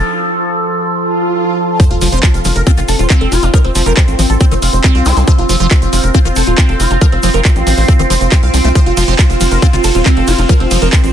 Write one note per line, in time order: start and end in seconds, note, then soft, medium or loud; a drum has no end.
0.00 1.81 F3 medium
0.00 1.82 A4 medium
0.93 swell medium
1.80 1.84 F3 loud
1.80 11.13 C4 medium
1.80 1.85 C5 loud
1.80 kick loud
1.80 closed hi-hat medium
1.80 sub drop medium
1.80 shaker medium
1.91 1.98 F1 medium
1.91 1.96 F4 medium
1.91 closed hi-hat soft
2.01 2.09 F1 loud
2.01 2.08 F3 medium
2.01 2.07 F4 medium
2.01 open hi-hat loud
2.01 shaker loud
2.12 2.20 F1 medium
2.12 2.19 F3 medium
2.12 2.23 C4 medium
2.12 2.17 C5 medium
2.12 closed hi-hat soft
2.12 shaker soft
2.23 2.28 F4 medium
2.23 kick loud
2.23 clap loud
2.23 closed hi-hat medium
2.23 shaker medium
2.31 2.42 F1 medium
2.31 2.39 F4 medium
2.31 11.13 F5 medium
2.31 closed hi-hat soft
2.31 shaker soft
2.37 11.13 F4 medium
2.45 2.52 F1 loud
2.45 2.48 F3 medium
2.45 2.50 F4 medium
2.45 11.13 C6 medium
2.45 open hi-hat loud
2.45 shaker medium
2.56 2.63 F1 medium
2.56 2.61 A#4 medium
2.56 closed hi-hat soft
2.56 shaker soft
2.67 2.71 C4 loud
2.67 2.72 F4 medium
2.67 kick loud
2.67 closed hi-hat medium
2.67 shaker medium
2.77 2.85 F1 medium
2.77 2.80 D#3 loud
2.77 2.83 F4 medium
2.77 closed hi-hat soft
2.77 shaker soft
2.88 2.96 F1 loud
2.88 2.94 A4 medium
2.88 open hi-hat loud
2.88 shaker medium
2.99 3.07 D#1 loud
2.99 3.10 C4 medium
2.99 3.04 F4 medium
2.99 closed hi-hat soft
2.99 shaker soft
3.10 3.33 C4 medium
3.10 3.15 F4 medium
3.10 kick loud
3.10 clap loud
3.10 closed hi-hat medium
3.10 shaker medium
3.21 3.28 F1 medium
3.21 3.26 A4 loud
3.21 closed hi-hat soft
3.32 3.39 F1 loud
3.32 3.44 F4 medium
3.32 3.37 F4 medium
3.32 open hi-hat loud
3.32 shaker medium
3.43 3.50 F1 medium
3.43 3.46 C4 loud
3.43 3.50 D#4 medium
3.43 3.48 F4 medium
3.43 closed hi-hat soft
3.43 shaker soft
3.54 3.58 F3 loud
3.54 3.61 D#4 medium
3.54 3.59 A#4 loud
3.54 kick loud
3.54 closed hi-hat medium
3.54 shaker medium
3.65 3.72 F1 medium
3.65 3.70 C4 medium
3.65 closed hi-hat soft
3.75 3.83 F1 loud
3.75 3.82 F3 medium
3.75 3.81 C4 medium
3.75 open hi-hat loud
3.75 shaker loud
3.86 3.94 F1 medium
3.86 3.93 F3 medium
3.86 4.19 A3 loud
3.86 3.91 A#4 medium
3.86 closed hi-hat soft
3.86 shaker soft
3.97 4.02 C4 medium
3.97 kick loud
3.97 clap loud
3.97 closed hi-hat medium
3.97 shaker soft
4.08 4.15 A1 medium
4.08 4.13 C4 medium
4.08 closed hi-hat soft
4.08 shaker soft
4.19 4.26 A1 loud
4.19 4.22 F3 medium
4.19 4.24 C4 medium
4.19 open hi-hat loud
4.19 shaker medium
4.30 4.37 A1 medium
4.30 4.35 A4 medium
4.30 closed hi-hat soft
4.30 shaker soft
4.40 4.45 C4 loud
4.40 4.46 C4 medium
4.40 kick loud
4.40 closed hi-hat medium
4.40 shaker medium
4.51 4.59 F1 medium
4.51 4.54 D#3 loud
4.51 4.57 C4 medium
4.51 closed hi-hat soft
4.51 shaker soft
4.62 4.70 F1 loud
4.62 4.67 F4 medium
4.62 open hi-hat loud
4.62 shaker loud
4.73 4.81 F1 loud
4.73 4.78 C4 medium
4.73 closed hi-hat soft
4.73 shaker soft
4.84 5.07 C4 medium
4.84 kick loud
4.84 clap loud
4.84 closed hi-hat medium
4.84 shaker medium
4.95 5.02 C2 medium
4.95 5.00 F4 loud
4.95 closed hi-hat soft
5.05 5.13 C2 loud
5.05 5.11 C4 medium
5.05 5.18 F4 medium
5.05 open hi-hat loud
5.05 zap medium
5.05 shaker medium
5.17 5.24 C2 medium
5.17 5.19 C4 loud
5.17 5.22 C4 medium
5.17 closed hi-hat soft
5.17 shaker soft
5.27 5.32 F3 loud
5.27 5.33 C5 loud
5.27 kick loud
5.27 closed hi-hat medium
5.27 shaker medium
5.38 5.46 F1 medium
5.38 5.44 F4 medium
5.38 closed hi-hat soft
5.49 5.57 F1 loud
5.49 5.56 F3 medium
5.49 5.54 F4 medium
5.49 open hi-hat loud
5.49 shaker loud
5.60 5.68 F1 medium
5.60 5.67 F3 medium
5.60 5.65 C5 medium
5.60 closed hi-hat soft
5.60 shaker soft
5.71 5.76 F4 medium
5.71 kick loud
5.71 clap loud
5.71 closed hi-hat medium
5.71 shaker medium
5.82 5.89 F1 medium
5.82 5.87 F4 medium
5.82 closed hi-hat soft
5.82 shaker soft
5.93 6.00 F1 loud
5.93 5.96 F3 medium
5.93 5.98 F4 medium
5.93 open hi-hat loud
5.93 shaker loud
6.04 6.11 F1 medium
6.04 6.09 A#4 medium
6.04 closed hi-hat soft
6.04 shaker soft
6.14 6.19 C4 loud
6.14 6.20 F4 medium
6.14 kick loud
6.14 closed hi-hat medium
6.14 shaker medium
6.25 6.33 F1 medium
6.25 6.28 D#3 loud
6.25 6.31 F4 medium
6.25 closed hi-hat soft
6.25 shaker soft
6.36 6.44 F1 loud
6.36 6.41 A4 medium
6.36 open hi-hat loud
6.36 shaker medium
6.47 6.55 D#1 loud
6.47 6.52 F4 medium
6.47 closed hi-hat soft
6.47 shaker soft
6.58 6.81 C4 medium
6.58 kick loud
6.58 clap loud
6.58 closed hi-hat medium
6.58 shaker medium
6.69 6.76 F1 medium
6.69 6.74 A4 loud
6.69 closed hi-hat soft
6.80 6.87 F1 loud
6.80 6.92 F4 medium
6.80 6.85 F4 medium
6.80 open hi-hat loud
6.80 shaker medium
6.91 6.98 F1 medium
6.91 6.93 C4 loud
6.91 6.96 F4 medium
6.91 closed hi-hat soft
6.91 shaker soft
7.01 7.06 F3 loud
7.01 7.07 A#4 loud
7.01 kick loud
7.01 closed hi-hat medium
7.01 shaker medium
7.12 7.20 F1 medium
7.12 7.17 C4 medium
7.12 closed hi-hat soft
7.23 7.31 F1 loud
7.23 7.30 F3 medium
7.23 7.28 C4 medium
7.23 open hi-hat loud
7.23 shaker loud
7.34 7.42 F1 loud
7.34 7.41 F3 medium
7.34 7.39 A#4 loud
7.34 closed hi-hat soft
7.34 shaker soft
7.45 7.50 C4 medium
7.45 kick loud
7.45 clap loud
7.45 closed hi-hat medium
7.45 shaker medium
7.56 7.63 A1 medium
7.56 7.61 C4 medium
7.56 closed hi-hat soft
7.56 shaker soft
7.67 7.74 A1 loud
7.67 7.69 F3 medium
7.67 7.72 C4 medium
7.67 open hi-hat loud
7.67 shaker loud
7.78 7.85 A1 medium
7.78 7.83 C5 medium
7.78 open hi-hat medium
7.78 shaker soft
7.88 7.94 C4 medium
7.88 7.93 C4 loud
7.88 kick loud
7.88 closed hi-hat medium
7.88 shaker soft
7.99 8.07 F1 medium
7.99 8.02 D#3 loud
7.99 8.04 C4 medium
7.99 closed hi-hat soft
7.99 shaker soft
8.10 8.18 F1 loud
8.10 8.15 F3 loud
8.10 8.15 C5 loud
8.10 open hi-hat loud
8.10 shaker loud
8.21 8.28 F1 loud
8.21 8.26 C4 medium
8.21 closed hi-hat soft
8.21 shaker soft
8.32 8.37 C4 medium
8.32 8.35 F#4 medium
8.32 kick loud
8.32 clap loud
8.32 closed hi-hat medium
8.32 shaker medium
8.43 8.50 C2 medium
8.43 8.48 F5 loud
8.43 closed hi-hat soft
8.54 8.61 C2 loud
8.54 8.58 F3 medium
8.54 8.59 C4 medium
8.54 open hi-hat loud
8.54 shaker loud
8.65 8.72 C2 medium
8.65 8.69 A3 medium
8.65 8.70 C4 medium
8.65 closed hi-hat soft
8.65 shaker soft
8.75 8.80 F3 loud
8.75 8.80 C5 loud
8.75 kick loud
8.75 closed hi-hat medium
8.75 shaker medium
8.86 8.94 F1 medium
8.86 8.91 F4 medium
8.86 closed hi-hat soft
8.97 9.05 F1 loud
8.97 9.04 F3 medium
8.97 9.02 F4 medium
8.97 open hi-hat loud
8.97 ride medium
8.97 shaker medium
9.08 9.15 F1 medium
9.08 9.15 F3 medium
9.08 9.18 C4 medium
9.08 9.13 C5 loud
9.08 closed hi-hat soft
9.08 shaker soft
9.19 9.24 F4 medium
9.19 kick loud
9.19 clap loud
9.19 closed hi-hat medium
9.19 shaker soft
9.30 9.37 F1 medium
9.30 9.35 F4 medium
9.30 closed hi-hat soft
9.30 shaker soft
9.40 9.48 F1 loud
9.40 9.43 F3 medium
9.40 9.46 F4 medium
9.40 open hi-hat loud
9.40 ride medium
9.40 shaker loud
9.51 9.59 F1 medium
9.51 9.57 A#4 medium
9.51 closed hi-hat soft
9.51 shaker soft
9.62 9.67 C4 loud
9.62 9.67 F4 medium
9.62 kick loud
9.62 closed hi-hat medium
9.62 shaker medium
9.73 9.81 F1 medium
9.73 9.76 D#3 loud
9.73 9.78 F4 medium
9.73 closed hi-hat soft
9.73 shaker soft
9.84 9.92 F1 loud
9.84 9.89 A4 loud
9.84 open hi-hat loud
9.84 ride medium
9.84 shaker loud
9.95 10.02 D#1 medium
9.95 10.05 C4 medium
9.95 10.00 F4 medium
9.95 closed hi-hat soft
9.95 shaker soft
10.06 10.29 C4 medium
10.06 10.11 F4 medium
10.06 kick loud
10.06 clap loud
10.06 closed hi-hat medium
10.06 shaker medium
10.17 10.24 F1 medium
10.17 10.22 A4 medium
10.17 closed hi-hat soft
10.27 10.35 F1 loud
10.27 10.33 F4 medium
10.27 10.40 F4 medium
10.27 open hi-hat loud
10.27 ride medium
10.27 shaker medium
10.38 10.46 F1 medium
10.38 10.41 C4 loud
10.38 10.44 F4 medium
10.38 closed hi-hat soft
10.38 shaker soft
10.49 10.82 F3 medium
10.49 10.54 F3 loud
10.49 10.54 A#4 loud
10.49 kick loud
10.49 closed hi-hat medium
10.49 shaker medium
10.60 10.68 F1 medium
10.60 10.65 C4 medium
10.60 closed hi-hat soft
10.71 10.78 F1 loud
10.71 10.78 F3 medium
10.71 10.76 C4 medium
10.71 open hi-hat loud
10.71 ride medium
10.71 shaker medium
10.82 10.89 F1 loud
10.82 10.89 F3 medium
10.82 10.87 A#4 loud
10.82 closed hi-hat soft
10.82 shaker soft
10.92 10.98 C4 medium
10.92 kick loud
10.92 clap loud
10.92 closed hi-hat medium
10.92 shaker medium
11.04 11.11 A1 medium
11.04 11.09 C4 medium
11.04 closed hi-hat soft
11.04 shaker soft